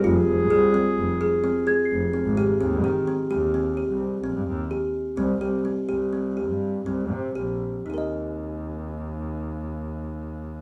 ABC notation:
X:1
M:11/8
L:1/16
Q:1/4=127
K:Eb
V:1 name="Celesta"
z12 z2 a' c''6- c''- | c''3 z16 z3 | z16 z6 | z16 z6 |]
V:2 name="Clarinet"
A16- A2 z4 | z16 z6 | z16 z6 | z16 z6 |]
V:3 name="Kalimba"
F4 A2 C4 A2 C2 A4 C2 G2 | C2 G2 C2 G2 C2 G4 C4 G4 | C2 G2 C2 G2 C2 G4 C4 G4 | [EGBe]16- [EGBe]6 |]
V:4 name="Double bass" clef=bass
F,,,2 F,,,2 C,,2 z2 F,,,2 z6 F,,,2 z A,,,2 z | E,,2 E,2 z2 E,,4- E,, C,,3 B,,, G,, E,,2 z4 | C,,2 C,,2 z2 C,,4- C,, G,,3 C,,2 C,2 B,,,4 | E,,16- E,,6 |]